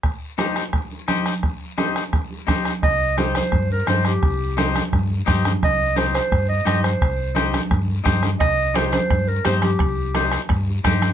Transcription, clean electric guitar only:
\new Staff \with { instrumentName = "Clean electric guitar" } { \time 4/4 \key c \minor \tempo 4 = 172 r4 <ees' g' c''>8 r4. <ees' g' c''>8 r8 | r4 <ees' g' c''>8 r4. <ees' g' c''>8 r8 | r4 <ees' g' c''>8 r4. <ees' g' c''>8 r8 | r4 <ees' g' c''>8 r4. <ees' g' c''>8 r8 |
r4 <ees' g' c''>8 r4. <ees' g' c''>8 r8 | r4 <ees' g' c''>8 r4. <ees' g' c''>8 r8 | r4 <ees' g' c''>8 r4. <ees' g' c''>8 r8 | r4 <ees' g' c''>8 r4. <ees' g' c''>8 r8 | }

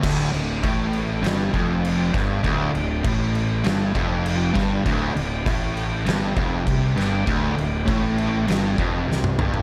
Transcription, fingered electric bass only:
\new Staff \with { instrumentName = "Fingered electric bass" } { \clef bass \time 4/4 \key d \minor \tempo 4 = 100 d,,8 d,,8 a,,4 g,,8 f,,4 g,,8 | d,,8 d,,8 a,,4 g,,8 f,,4 g,,8 | d,,8 d,,8 a,,4 g,,8 f,,8 c,8 g,,8 | d,,8 d,,8 a,,4 g,,8 f,,8 c,8 g,,8 | }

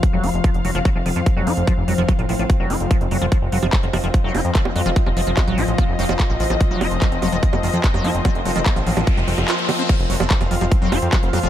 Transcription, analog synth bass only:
\new Staff \with { instrumentName = "Analog synth bass" } { \clef bass \time 4/4 \tempo 4 = 146 r16 f,,16 f,,16 f,,16 r16 f,,16 f,,16 f,,16 r16 f,,16 f,,16 f,16 r16 f,,16 f,16 f,,16 | r16 f,,16 f,,16 f,,16 r16 a,,16 a,,16 a,,16 r16 f,,16 f,,16 f,,16 r16 f,,16 f,,16 f,,16 | r16 f,,16 f,,16 f,,16 r16 f,,16 f,,16 f,,16 r16 f,,16 f,,16 f,16 r16 f,,16 f,16 f,,16 | r16 f,,16 f,,16 f,,16 r16 a,,16 a,,16 a,,16 r16 f,,16 f,,16 f,,16 r16 a,,16 a,,16 a,,16 |
r16 f,,16 f,,16 f,,16 r16 f,,16 f,,16 f,,16 r16 f,,16 f,,16 f,16 r16 f,,16 f,16 f,,16 | r16 f,,16 f,,16 f,,16 r16 a,,16 a,,16 a,,16 r16 f,,16 f,,16 f,,16 r4 | r16 f,,16 f,,16 f,,16 r16 f,,16 f,,16 f,,16 r16 f,,16 f,,16 f,16 r16 f,,16 f,16 f,,16 | }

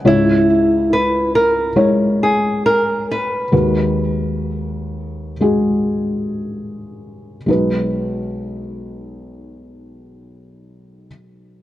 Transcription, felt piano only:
<<
  \new Staff \with { instrumentName = "Felt piano" } { \time 4/4 \key b \major \tempo 4 = 61 <gis e' cis''>2 <gis e' cis''>2 | <gis fis' b'>2 <gis fis' gis'>2 | <gis dis' b'>1 | }
  \new Staff \with { instrumentName = "Felt piano" } { \clef bass \time 4/4 \key b \major <cis, gis,>1 | <dis, dis>1 | b,,1 | }
>>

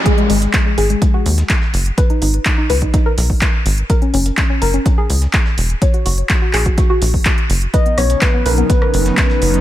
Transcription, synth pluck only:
\new Staff \with { instrumentName = "Synth pluck" } { \time 4/4 \key gis \minor \tempo 4 = 125 gis'16 gis16 gis16 r16 gis16 gis16 gis'16 gis16 gis16 fis'4. r16 | b'16 dis'16 dis'16 r16 dis'16 dis'16 b'16 dis'16 dis'16 ais'4. r16 | ais'16 cis'16 cis'16 r16 cis'16 cis'16 ais'16 cis'16 cis'16 gis'4. r16 | cis''16 fis'16 fis'16 r16 fis'16 fis'16 gis'16 fis'16 fis'16 fis'4. r16 |
b'16 b16 b16 r16 b16 b16 b'16 b16 b16 ais'4. r16 | }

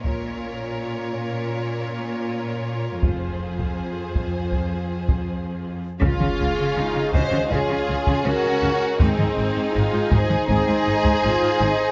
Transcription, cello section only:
\new Staff \with { instrumentName = "Cello section" } { \clef bass \time 4/4 \key des \major \tempo 4 = 80 bes,1 | f,2.~ f,8. r16 | des16 des16 des16 des16 des16 des16 des16 des16 des16 des16 des16 des16 des16 des16 des16 r16 | aes,16 aes,16 aes,16 aes,16 aes,16 aes,16 aes,16 aes,16 aes,16 aes,16 aes,16 aes,16 aes,16 aes,16 aes,16 r16 | }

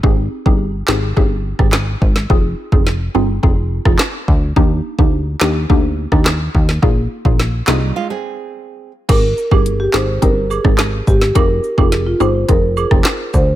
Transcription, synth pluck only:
\new Staff \with { instrumentName = "Synth pluck" } { \time 4/4 \key aes \lydian \tempo 4 = 106 <c' ees' g' aes'>8. <c' ees' g' aes'>16 r8 <c' ees' g' aes'>16 r16 <c' ees' g' aes'>8. <c' ees' g' aes'>16 r4 | <c' ees' f' aes'>8. <c' ees' f' aes'>16 r8 <c' ees' f' aes'>16 r16 <c' ees' f' aes'>8. <c' ees' f' aes'>16 r4 | <bes d' ees' g'>8. <bes d' ees' g'>16 r8 <bes d' ees' g'>16 r16 <bes d' ees' g'>8. <bes d' ees' g'>16 r4 | <bes ees' f' aes'>8. <bes ees' f' aes'>16 r8 <bes ees' f' aes'>16 r2 r16 |
<c' ees' g' aes'>16 r8 <c' ees' g' aes'>8. <c' ees' g' aes'>8 <c' ees' g' aes'>16 r8 <c' ees' g' aes'>16 r4 | <c' ees' f' aes'>16 r8 <c' ees' f' aes'>8. <c' ees' f' aes'>8 <c' ees' f' aes'>16 r8 <c' ees' f' aes'>16 r4 | }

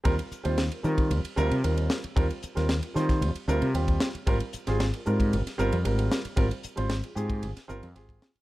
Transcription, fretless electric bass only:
\new Staff \with { instrumentName = "Fretless electric bass" } { \clef bass \time 4/4 \key ees \major \tempo 4 = 114 ees,16 r8 ees,8 r16 ees8 ees,16 r16 d,16 c16 ees,8 r8 | ees,16 r8 ees,8 r16 ees8 ees,16 r16 d,16 c16 ees,8 r8 | aes,,16 r8 aes,,8 r16 aes,8 aes,,16 r16 g,,16 f,16 aes,,8 r8 | aes,,16 r8 aes,,8 r16 aes,8 aes,,16 r16 g,,16 f,16 aes,,8 r8 | }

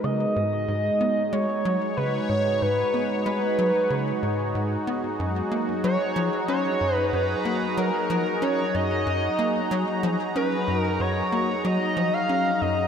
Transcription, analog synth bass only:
\new Staff \with { instrumentName = "Analog synth bass" } { \clef bass \time 4/4 \key fis \mixolydian \tempo 4 = 93 cis8 gis,8 gis,8 b8 gis8 fis8 cis8 gis,8 | gis,8 b8 gis8 fis8 cis8 gis,8 gis,8 b8 | fis,8 ais8 fis8 eis8 cis'8 fis,8 fis,8 ais8 | fis8 eis8 cis'8 fis,8 fis,8 ais8 fis8 eis8 |
cis'8 fis,8 fis,8 ais8 fis8 eis8 cis'8 fis,8 | }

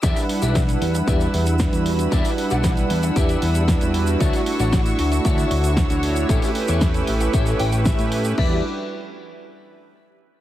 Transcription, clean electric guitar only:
\new Staff \with { instrumentName = "Clean electric guitar" } { \time 4/4 \key e \dorian \tempo 4 = 115 << { r1 | r1 | r1 | r2 r8 g''8 e''4 |
r1 | } \\ { <g' b' d'' e''>8 r16 <g' b' d'' e''>16 r4 <g' b' d'' e''>4 r4 | <g' b' d'' e''>8 r16 <g' b' d'' fis''>16 r4 <g' b' d'' e''>4 r4 | <fis' cis'' d'' e''>8 r16 <fis' cis'' d'' fis''>16 r4 <fis' cis'' d'' e''>4 r4 | <g' a' cis'' e''>8 r16 <g' a' cis'' e''>16 r4 <g' a' cis'' e''>4 r4 |
<g' d'' e''>8 r2. r8 | } >> }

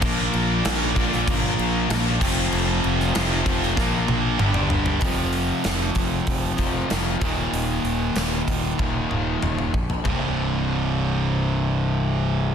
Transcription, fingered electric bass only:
\new Staff \with { instrumentName = "Fingered electric bass" } { \clef bass \time 4/4 \key f \major \tempo 4 = 96 bes,,8 bes,,8 bes,,8 bes,,8 g,,8 bes,,8 bes,,8 f,,8 | f,,8 f,,8 f,,8 f,,8 bes,,8 bes,,8 g,,8 g,,8 | f,,4 f,,8 f,,8 f,,8 f,,8 f,,8 ees,,8 | ees,,8 ees,,8 ees,,8 ees,,8 ees,,8 ees,,8 ees,,8 bes,,8 |
c,,1 | }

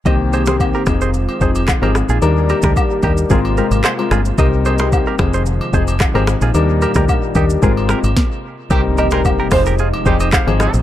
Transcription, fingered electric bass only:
\new Staff \with { instrumentName = "Fingered electric bass" } { \clef bass \time 4/4 \key c \minor \tempo 4 = 111 c,4~ c,16 r16 f,,4 f,,8. aes,,8 bes,,16 | ees,8. d,16 r8 ees,8 aes,,8. aes,,16 r8 g,,8 | c,4~ c,16 r16 f,,4 f,,8. aes,,8 bes,,16 | ees,8. d,16 r8 ees,8 aes,,8. aes,,16 r4 |
c,4~ c,16 r16 f,,4 f,,8. aes,,8 bes,,16 | }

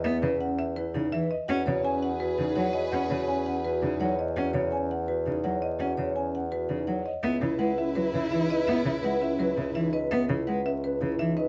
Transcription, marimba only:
\new Staff \with { instrumentName = "Marimba" } { \time 4/4 \key e \major \tempo 4 = 167 e''8 r8 fis''8 e''8 b'8 r8 e''8 dis''8 | fis''8 r8 gis''8 fis''8 b'8 r8 fis''8 dis''8 | fis''8 r8 gis''8 fis''8 b'8 r8 fis''8 dis''8 | fis''8 r8 gis''8 fis''8 b'8 r8 fis''8 dis''8 |
fis''8 r8 gis''8 fis''8 b'8 r8 fis''8 dis''8 | \key cis \minor e''8 r8 fis''8 e''8 b'8 r8 e''8 dis''8 | e''8 r8 fis''8 e''8 b'8 r8 e''8 dis''8 | e''8 r8 fis''8 e''8 b'8 r8 e''8 dis''8 | }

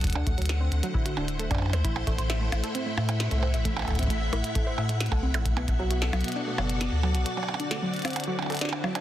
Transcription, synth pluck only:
\new Staff \with { instrumentName = "Synth pluck" } { \time 4/4 \key d \dorian \tempo 4 = 133 r16 d'16 a16 fis16 r16 c'16 r16 fis16 e'16 fis'16 d'16 r16 a16 d'16 r8 | e'16 r16 a16 c''16 e''16 a16 r16 a'16 c'16 a16 r16 e'16 r16 a16 c''16 e''16 | a16 r16 a'16 c'16 a16 r16 e'16 r16 a16 c''16 e''16 a16 r16 a'16 c'16 a16 | r16 b16 r16 fis16 fis'16 a'16 fis16 r16 d'16 a16 fis16 r16 b16 r16 fis16 fis'16 |
fis'16 fis16 r16 d'16 a16 fis16 r16 c'16 r16 fis16 r16 a'16 d'16 r16 fis16 d'16 | }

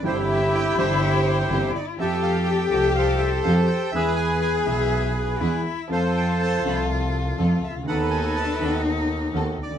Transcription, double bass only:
\new Staff \with { instrumentName = "Double bass" } { \clef bass \time 4/4 \key f \lydian \tempo 4 = 123 g,,4. g,,4. g,,8 r8 | f,4. c,4. f,8 r8 | e,4. b,,4. e,8 r8 | f,4. c,4. f,8 cis,8 |
dis,4. dis,4. dis,8 d,8 | }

